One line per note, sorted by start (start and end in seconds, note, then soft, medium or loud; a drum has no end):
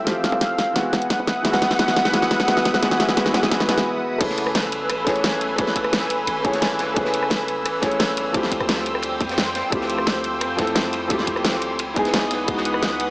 0.00 0.34 F2 medium
0.00 0.04 F3 medium
0.00 0.05 A3 medium
0.00 0.07 C4 medium
0.00 0.72 C4 medium
0.00 0.77 E4 medium
0.00 0.78 F4 loud
0.00 0.09 G4 loud
0.00 0.77 A4 loud
0.00 0.72 G5 medium
0.00 0.72 E6 medium
0.04 0.72 E3 medium
0.04 0.73 F3 medium
0.04 0.74 A3 medium
0.04 0.74 C4 medium
0.04 0.41 F5 loud
0.04 snare medium
0.04 closed hi-hat medium
0.09 0.76 G4 loud
0.24 snare medium
0.24 closed hi-hat medium
0.32 0.74 D2 medium
0.32 high bongo medium
0.41 0.77 F5 loud
0.41 snare medium
0.41 closed hi-hat medium
0.58 snare medium
0.58 closed hi-hat medium
0.58 high bongo medium
0.73 1.43 C#2 medium
0.73 1.41 E3 medium
0.73 1.42 G#3 medium
0.73 1.43 B3 medium
0.73 1.44 E4 medium
0.73 4.17 B4 medium
0.73 4.17 E5 medium
0.73 4.17 F#5 medium
0.73 3.86 F#5 loud
0.73 4.17 D#6 medium
0.73 snare medium
0.73 closed hi-hat medium
0.78 1.45 F#4 loud
0.93 snare medium
0.93 closed hi-hat medium
0.93 high bongo medium
1.02 closed hi-hat soft
1.10 snare medium
1.10 closed hi-hat medium
1.19 high bongo medium
1.27 snare medium
1.27 closed hi-hat medium
1.42 2.15 C#2 loud
1.42 1.75 E3 loud
1.42 1.76 G#3 medium
1.42 1.78 B3 medium
1.42 1.78 E4 medium
1.42 snare medium
1.42 closed hi-hat medium
1.47 1.79 F#4 loud
1.53 snare medium
1.53 high bongo medium
1.62 snare medium
1.62 closed hi-hat medium
1.71 snare medium
1.77 2.10 E3 medium
1.77 2.11 G#3 medium
1.77 2.12 B3 medium
1.77 2.13 E4 medium
1.77 snare medium
1.77 closed hi-hat medium
1.77 high bongo soft
1.82 2.14 F#4 loud
1.88 snare medium
1.96 snare loud
1.96 closed hi-hat medium
2.05 snare medium
2.11 3.10 E2 medium
2.11 2.44 E3 loud
2.11 2.45 G#3 medium
2.11 2.47 B3 loud
2.11 2.47 E4 medium
2.11 snare loud
2.11 closed hi-hat medium
2.11 high bongo medium
2.16 2.48 F#4 loud
2.22 snare medium
2.31 snare loud
2.31 closed hi-hat medium
2.40 snare medium
2.40 closed hi-hat soft
2.40 high bongo medium
2.46 2.79 E3 loud
2.46 2.80 G#3 medium
2.46 2.81 B3 medium
2.46 2.82 E4 medium
2.46 snare loud
2.46 closed hi-hat loud
2.51 2.83 F#4 loud
2.57 snare medium
2.65 snare loud
2.65 closed hi-hat medium
2.74 snare medium
2.74 high bongo medium
2.80 2.96 E3 loud
2.80 2.97 G#3 medium
2.80 2.98 B3 medium
2.80 2.99 E4 medium
2.80 snare loud
2.80 closed hi-hat loud
2.85 3.00 F#4 loud
2.91 snare medium
2.91 closed hi-hat soft
2.97 3.13 E3 loud
2.97 3.14 G#3 medium
2.97 3.16 B3 medium
2.97 3.16 E4 medium
2.97 snare loud
2.97 closed hi-hat medium
2.97 high bongo soft
3.02 3.17 F#4 loud
3.09 snare medium
3.15 3.30 E3 loud
3.15 3.32 G#3 medium
3.15 3.33 B3 medium
3.15 3.34 E4 medium
3.15 snare loud
3.15 closed hi-hat loud
3.20 3.34 F#4 loud
3.26 snare medium
3.32 3.48 E3 loud
3.32 3.49 G#3 medium
3.32 3.50 B3 loud
3.32 3.51 E4 medium
3.32 snare loud
3.32 closed hi-hat medium
3.32 high bongo medium
3.37 3.52 F#4 loud
3.43 snare medium
3.49 3.65 E3 loud
3.49 3.66 G#3 loud
3.49 3.67 B3 loud
3.49 3.68 E4 loud
3.49 snare loud
3.49 closed hi-hat loud
3.54 3.69 F#4 loud
3.60 snare medium
3.60 high bongo soft
3.66 3.84 E3 loud
3.66 3.84 G#3 medium
3.66 3.85 B3 medium
3.66 3.85 E4 medium
3.66 snare loud
3.66 closed hi-hat medium
3.71 3.86 F#4 loud
3.78 snare loud
3.78 closed hi-hat soft
4.18 4.91 F#1 loud
4.18 5.03 A3 loud
4.18 5.04 C#4 medium
4.18 5.05 E4 medium
4.18 5.05 G#4 medium
4.18 8.30 B4 medium
4.18 8.30 G#5 medium
4.18 11.75 E6 medium
4.18 kick loud
4.18 closed hi-hat loud
4.18 ride medium
4.18 crash loud
4.23 5.06 B4 loud
4.30 snare soft
4.38 closed hi-hat medium
4.38 ride medium
4.47 cross-stick soft
4.55 snare loud
4.55 closed hi-hat medium
4.55 ride medium
4.72 closed hi-hat medium
4.72 ride medium
4.90 5.86 A1 medium
4.90 cross-stick soft
4.90 closed hi-hat loud
4.90 ride medium
5.04 5.54 A3 loud
5.04 5.56 C#4 medium
5.04 5.57 E4 medium
5.04 5.57 G#4 medium
5.04 kick loud
5.04 snare medium
5.04 closed hi-hat medium
5.04 ride medium
5.09 5.58 C#5 loud
5.16 closed hi-hat soft
5.24 snare loud
5.24 closed hi-hat loud
5.24 ride medium
5.41 closed hi-hat medium
5.41 ride medium
5.56 6.41 A3 loud
5.56 6.42 C#4 medium
5.56 6.43 E4 medium
5.56 6.43 G#4 medium
5.56 kick loud
5.56 closed hi-hat medium
5.56 ride medium
5.61 6.44 B4 loud
5.67 snare soft
5.76 kick medium
5.76 closed hi-hat medium
5.76 ride medium
5.84 6.27 F#1 medium
5.84 cross-stick soft
5.84 ride soft
5.93 snare loud
5.93 closed hi-hat medium
5.93 ride medium
6.02 snare soft
6.10 closed hi-hat medium
6.10 ride medium
6.27 6.95 G#1 medium
6.27 closed hi-hat medium
6.27 ride medium
6.42 6.92 A3 loud
6.42 6.94 C#4 medium
6.42 6.94 E4 medium
6.42 6.95 G#4 medium
6.42 kick loud
6.42 closed hi-hat medium
6.42 ride medium
6.47 6.96 C#5 loud
6.53 snare soft
6.53 closed hi-hat soft
6.62 snare loud
6.62 closed hi-hat loud
6.62 ride medium
6.79 snare soft
6.79 closed hi-hat medium
6.79 ride medium
6.94 7.67 F#1 loud
6.94 7.79 A3 loud
6.94 7.80 C#4 medium
6.94 7.81 E4 medium
6.94 7.81 G#4 medium
6.94 kick loud
6.94 closed hi-hat medium
6.94 ride medium
6.99 7.82 B4 loud
7.05 snare soft
7.14 closed hi-hat medium
7.14 ride medium
7.23 cross-stick soft
7.30 snare loud
7.30 closed hi-hat medium
7.30 ride medium
7.48 closed hi-hat medium
7.48 ride medium
7.65 8.36 A1 medium
7.65 cross-stick soft
7.65 closed hi-hat medium
7.65 ride medium
7.80 8.31 A3 loud
7.80 8.32 C#4 medium
7.80 8.32 E4 medium
7.80 8.33 G#4 medium
7.80 kick loud
7.80 snare medium
7.80 closed hi-hat medium
7.80 ride medium
7.85 8.34 C#5 loud
7.91 closed hi-hat soft
8.00 snare loud
8.00 closed hi-hat medium
8.00 ride medium
8.17 closed hi-hat medium
8.17 ride medium
8.32 8.59 D2 medium
8.32 9.17 F3 medium
8.32 9.18 A3 medium
8.32 9.19 C4 medium
8.32 9.19 E4 medium
8.32 11.76 C5 medium
8.32 11.76 G5 medium
8.32 kick loud
8.32 closed hi-hat medium
8.32 ride medium
8.37 9.20 G4 loud
8.43 snare soft
8.52 kick medium
8.52 closed hi-hat medium
8.52 ride medium
8.60 9.22 D2 medium
8.60 cross-stick soft
8.60 ride soft
8.69 snare loud
8.69 closed hi-hat medium
8.69 ride medium
8.78 snare soft
8.86 closed hi-hat medium
8.86 ride medium
8.95 cross-stick medium
9.02 closed hi-hat medium
9.02 ride medium
9.21 9.62 F2 loud
9.21 kick loud
9.21 closed hi-hat medium
9.21 ride medium
9.29 snare soft
9.29 closed hi-hat soft
9.38 snare loud
9.38 closed hi-hat medium
9.38 ride medium
9.55 snare soft
9.55 closed hi-hat medium
9.55 ride medium
9.70 10.43 D2 loud
9.70 10.54 F3 medium
9.70 10.56 A3 medium
9.70 10.57 C4 medium
9.70 10.57 E4 medium
9.70 kick loud
9.70 closed hi-hat medium
9.70 ride medium
9.75 10.58 G4 loud
9.81 snare soft
9.90 closed hi-hat medium
9.90 ride medium
9.98 cross-stick soft
10.07 snare loud
10.07 closed hi-hat medium
10.07 ride medium
10.24 closed hi-hat medium
10.24 ride medium
10.41 11.38 F2 medium
10.41 cross-stick soft
10.41 closed hi-hat medium
10.41 ride medium
10.56 11.06 F3 medium
10.56 11.07 A3 medium
10.56 11.08 C4 medium
10.56 11.09 E4 medium
10.56 kick loud
10.56 snare medium
10.56 closed hi-hat medium
10.56 ride medium
10.61 11.09 A4 loud
10.67 closed hi-hat soft
10.75 snare loud
10.75 closed hi-hat medium
10.75 ride medium
10.93 closed hi-hat medium
10.93 ride medium
11.08 11.77 F3 loud
11.08 11.78 A3 medium
11.08 11.78 C4 medium
11.08 11.79 E4 medium
11.08 kick loud
11.08 closed hi-hat medium
11.08 ride medium
11.13 11.79 G4 loud
11.19 snare soft
11.27 kick medium
11.27 closed hi-hat medium
11.27 ride medium
11.36 11.79 D2 medium
11.36 cross-stick soft
11.36 ride soft
11.44 snare loud
11.44 closed hi-hat medium
11.44 ride medium
11.54 snare soft
11.62 closed hi-hat medium
11.62 ride medium
11.79 12.47 C#2 medium
11.79 13.10 B4 medium
11.79 13.10 F#5 medium
11.79 13.10 D#6 medium
11.79 closed hi-hat medium
11.79 ride medium
11.94 12.45 G#3 medium
11.94 12.46 B3 medium
11.94 12.47 D#4 medium
11.94 12.45 E4 loud
11.94 kick loud
11.94 closed hi-hat medium
11.94 ride medium
11.99 12.47 G#4 loud
12.05 snare soft
12.05 closed hi-hat soft
12.14 snare loud
12.14 closed hi-hat medium
12.14 ride medium
12.31 snare soft
12.31 closed hi-hat medium
12.31 ride medium
12.46 13.10 C#2 loud
12.46 13.10 E3 medium
12.46 13.10 G#3 medium
12.46 13.10 B3 medium
12.46 13.10 D#4 medium
12.46 kick loud
12.46 closed hi-hat loud
12.46 ride medium
12.51 13.10 F#4 loud
12.57 snare soft
12.65 closed hi-hat medium
12.65 ride medium
12.74 cross-stick soft
12.83 snare loud
12.83 closed hi-hat medium
12.83 ride medium
13.00 closed hi-hat medium
13.00 ride medium